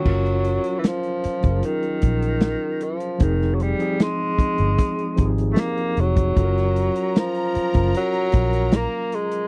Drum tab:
CC |x---------------|----------------|----------------|
HH |-xxxxxxxxxxxx-xx|x-xxx-xxxxxxxxxx|xxxxxxxxxxxxx-xx|
SD |----o-------o---|-o--o-------o---|-o--o-------o---|
BD |o------o--o-----|o-----o-o-o----o|o------o--o-----|